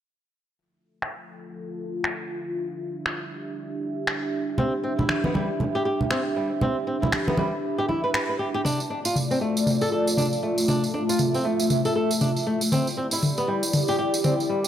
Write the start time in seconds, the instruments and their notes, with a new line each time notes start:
0.52 analog synth pad D4 F4 A4 E5
1.02 finger snap
2.04 finger snap
2.55 analog synth pad G4
3.06 finger snap
4.07 finger snap
4.58 nylon-string guitar C4, low conga
4.84 nylon-string guitar C4
4.99 nylon-string guitar E4, high conga, low conga
5.09 finger snap, high conga
5.24 nylon-string guitar B3, high conga
5.34 nylon-string guitar G3, high conga
5.60 high conga, low conga
5.75 nylon-string guitar G4
5.85 nylon-string guitar G4
6.01 low conga
6.11 nylon-string guitar C4, finger snap
6.36 nylon-string guitar G3
6.61 nylon-string guitar C4, low conga
6.87 nylon-string guitar C4
7.02 nylon-string guitar E4, high conga, low conga
7.12 finger snap, high conga
7.28 nylon-string guitar B3, high conga
7.38 nylon-string guitar G3, high conga
7.78 nylon-string guitar G4
7.89 nylon-string guitar E4, high conga
8.04 nylon-string guitar B4
8.14 nylon-string guitar B4, finger snap
8.29 nylon-string guitar B4
8.39 nylon-string guitar G4
8.54 nylon-string guitar G4
8.65 analog synth pad A3 F4 D5, nylon-string guitar D4, mid tom, tambourine
8.80 tambourine
8.90 nylon-string guitar D4
9.05 nylon-string guitar F4, tambourine
9.16 mid tom, tambourine
9.31 nylon-string guitar C4, tambourine
9.41 analog synth bass D2, nylon-string guitar A3
9.57 tambourine
9.67 mid tom, tambourine
9.81 nylon-string guitar A4, tambourine
9.92 nylon-string guitar A4
10.07 tambourine
10.17 nylon-string guitar D4, mid tom, tambourine
10.33 tambourine
10.43 analog synth bass D2, nylon-string guitar A3
10.58 tambourine
10.68 nylon-string guitar D4, analog synth pad E5, mid tom, tambourine
10.84 tambourine
10.94 nylon-string guitar D4
11.09 nylon-string guitar F4, tambourine
11.19 mid tom, tambourine
11.34 nylon-string guitar C4, tambourine
11.45 analog synth bass D2, nylon-string guitar A3
11.60 tambourine
11.70 mid tom, tambourine
11.85 nylon-string guitar A4, tambourine
11.95 analog synth bass D2, nylon-string guitar A4
12.11 tambourine
12.21 nylon-string guitar D4, mid tom, tambourine
12.36 tambourine
12.46 analog synth bass C2, nylon-string guitar A3
12.61 tambourine
12.72 nylon-string guitar C4, analog synth pad E4 G4 D5, mid tom, tambourine
12.87 tambourine
12.97 nylon-string guitar C4
13.11 nylon-string guitar E4, tambourine
13.23 mid tom, tambourine
13.38 nylon-string guitar B3, tambourine
13.48 analog synth bass C2, nylon-string guitar G3
13.63 tambourine
13.73 mid tom, tambourine
13.88 nylon-string guitar G4, tambourine
13.99 nylon-string guitar G4
14.14 tambourine
14.24 nylon-string guitar C4, mid tom, tambourine
14.40 tambourine
14.49 analog synth bass C2, nylon-string guitar G3
14.64 tambourine